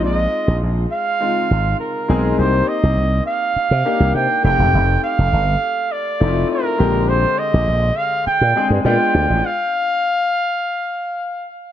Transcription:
X:1
M:4/4
L:1/16
Q:1/4=102
K:Bbmix
V:1 name="Flugelhorn"
e4 z2 f6 B4 | c2 e4 f6 g2 g2- | g2 f6 d4 B4 | c2 e4 f2 g4 g4 |
f12- f2 z2 |]
V:2 name="Grand piano"
[A,CEF]6 z2 [A,CEF]6 [A,CEA]2 | [B,CEG]8 z2 [B,DEG]4 [=A,CEG]2- | [=A,CEG]6 z4 [A,CE_F=F]4 [D,_A,CG]2- | [D,A,CG]6 z4 [A,CDA]2 [A,_CDF]4 |
z16 |]
V:3 name="Slap bass" clef=bass
B,,,2 z B,,, B,,,2 z4 A,,,2 z2 _C,,2 | C,,2 z C,, C,,2 z3 C, z C,, C, z F,,, _F,,, | F,,,2 z F,,, G,,,2 z4 F,,,2 z2 B,,,2- | B,,,2 z B,,, B,,,2 z3 B,, z G,, B,, z D,, =A,,, |
z16 |]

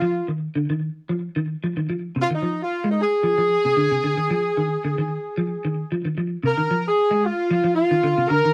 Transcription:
X:1
M:4/4
L:1/16
Q:"Swing 16ths" 1/4=112
K:Fdor
V:1 name="Horn section"
F2 z12 z2 | F E2 F2 E A8- A2- | A12 z4 | B3 A3 F4 F4 B2 |]
V:2 name="Clean electric guitar" clef=bass
F,2 E,2 D, E,2 z F,2 E,2 F, E, F,2 | C, E, F,2 z A,2 z F, F,2 C, D, C, D, E, | F,2 E,2 D, E,2 z F,2 E,2 F, E, F,2 | C, E, F,2 z A,2 z F, F,2 E, D, C, D, E, |]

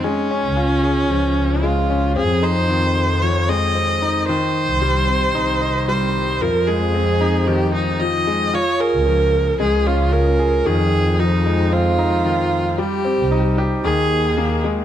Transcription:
X:1
M:4/4
L:1/16
Q:1/4=113
K:Fm
V:1 name="Viola"
D12 F4 | A2 c6 d2 e6 | c12 c4 | B2 A6 G2 E2 e4 |
d2 B6 A2 F2 B4 | A4 E4 F8 | G6 z2 A6 z2 |]
V:2 name="Upright piano"
A,2 D2 F2 A2 F,2 z2 A,2 D2 | C2 E2 E,2 z2 F,2 A,2 C2 E2 | E,2 z2 G,2 C2 E2 e2 G,2 z2 | F,2 A,2 C2 E2 E,2 z2 F,2 A,2 |
F2 A2 F,2 z2 A,2 D2 F2 A2 | E,2 z2 F,2 A,2 C2 E2 E,2 z2 | G,2 C2 E2 G2 E,2 z2 B,2 A,2 |]
V:3 name="Double bass section" clef=bass
z3 D,,4- D,, D,,8 | F,,16 | z3 C,,4- C,, C,,8 | F,,16 |
z3 D,,4- D,, D,,8 | F,,16 | z3 C,,4- C,, E,,8 |]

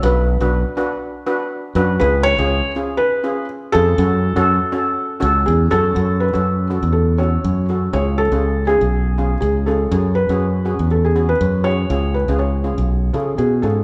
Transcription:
X:1
M:4/4
L:1/16
Q:"Swing 16ths" 1/4=121
K:F#m
V:1 name="Felt piano"
B6 z8 z2 | B2 c4 z2 B4 z2 A2- | A12 G2 A2- | A2 B4 z2 A2 c4 z2 |
c2 A4 G6 G2 A2- | A2 B6 A G2 B3 c2- | c2 B2 c6 A2 G2 A2 |]
V:2 name="Steel pan"
[DFB]2 z [DFB]2 z [DFB]2 z2 [DFB]2 z2 [DFB] z | [C^EG]2 z [CEG]2 z [CEG]2 z2 [CEG]2 z2 [CEG] z | [CFA]2 z [CFA]2 z [CFA]2 z2 [CFA]2 z2 [CFA] z | [CFA]2 z [CFA]2 z [CFA]2 z2 [CFA]2 z2 [CFA] z |
[C^EG]2 z [CEG]2 z [CEG]2 z2 [CEG]2 z2 [CEG] z | [CFG]2 z [CFG]2 z [CFG]2 z2 [CFG]2 z2 [CFG] z | [C^EG]2 z [CEG]2 z [CEG]2 z2 [CEG]2 z2 [CEG] z |]
V:3 name="Fingered electric bass" clef=bass
B,,,3 B,,,2 z8 z F,,2 | C,,3 C,,2 z8 z ^E,,2 | F,,3 F,,2 z4 z C,,2 E,,2 F,,2 | F,,3 F,,4 E,,4- E,, F,,4 |
C,,3 C,,4 B,,,4- B,,, C,,4 | F,,3 F,,4 E,,4- E,, F,,4 | C,,3 C,,4 B,,,3 C,2 B,,2 G,,2 |]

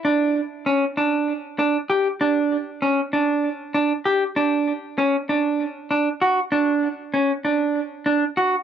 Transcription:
X:1
M:7/8
L:1/8
Q:1/4=97
K:D
V:1 name="Clean electric guitar"
D2 C D2 D G | D2 C D2 D G | D2 C D2 D F | D2 C D2 D F |]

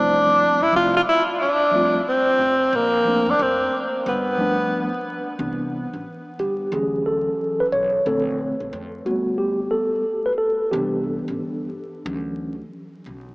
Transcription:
X:1
M:4/4
L:1/16
Q:"Swing 16ths" 1/4=90
K:Flyd
V:1 name="Tenor saxophone"
D3 E F F E2 D4 C4 | _B,3 D C2 z2 =B,6 z2 | [K:Clyd] z16 | z16 |
z16 |]
V:2 name="Tine electric piano"
[F,G,A,CE]2 z2 [F,G,A,CE]2 z4 [F,G,A,CF]2 z4 | z2 [F,A,_B,CD]2 z6 [F,G,A,=B,D]2 z4 | [K:Clyd] z6 G2 _A2 =A3 B ^c2 | A2 z4 F2 G2 A3 B A2 |
G2 z12 z2 |]
V:3 name="Tine electric piano"
z16 | z16 | [K:Clyd] [E,B,D]2 z6 [E,F,^C]6 z2 | [D,A,C]2 z4 [G,A,B,]6 z4 |
[E,B,D]6 z2 [E,F,^C]2 z6 |]
V:4 name="Upright bass" clef=bass
F,,,3 A,,, C,,2 z8 F,,,2 | _B,,,3 F,, F,,2 z2 G,,,4 z4 | [K:Clyd] C,,3 A,,, z2 G,,,2 D,,4 z2 B,,,2 | _B,,,3 B,,, =F,,2 G,,,4 z6 |
C,,3 A,,, G,,,2 z2 D,,4 z2 B,,,2 |]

